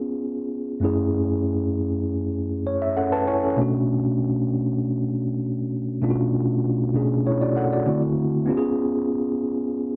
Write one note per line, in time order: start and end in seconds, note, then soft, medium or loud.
0.00 0.77 B3 medium
0.00 0.78 C#4 medium
0.00 0.79 F4 medium
0.00 0.80 G#4 medium
0.80 3.22 F#2 medium
0.80 3.23 A3 medium
0.80 2.93 C#4 medium
0.80 2.94 E4 medium
0.85 2.94 G#4 medium
2.67 2.81 C#5 medium
2.82 2.96 E5 medium
2.97 3.12 C#4 soft
2.97 3.12 A4 medium
2.97 3.11 F#5 medium
3.12 3.27 B4 medium
3.12 3.27 A5 medium
3.27 3.42 E4 medium
3.27 3.42 C#5 medium
3.27 3.56 G#5 medium
3.43 3.58 C#4 soft
3.43 3.72 A4 soft
3.57 5.98 B2 medium
3.57 5.99 A3 medium
3.57 6.00 C#4 medium
3.57 6.00 D4 medium
3.61 6.01 F#4 medium
6.02 6.93 B2 medium
6.02 6.94 A3 medium
6.02 6.94 C#4 medium
6.02 6.95 D4 medium
6.02 6.10 F4 medium
6.10 6.99 F#4 medium
6.94 7.87 B2 medium
6.94 7.85 A3 soft
6.94 7.87 C#4 medium
6.94 7.87 D4 soft
6.94 7.26 G#4 medium
7.27 7.41 E4 medium
7.27 7.41 C#5 medium
7.42 7.56 F#4 medium
7.42 7.56 D5 medium
7.57 7.71 A4 medium
7.57 7.71 F#5 medium
7.72 7.87 F#4 medium
7.72 8.01 D5 medium
7.86 8.48 D3 medium
7.86 8.48 A3 medium
7.86 8.48 C4 medium
7.86 8.48 E4 medium
7.86 8.49 F#4 medium
8.46 9.96 B3 medium
8.46 9.96 C#4 medium
8.46 9.96 F4 medium
8.50 8.56 G4 medium
8.57 9.96 G#4 medium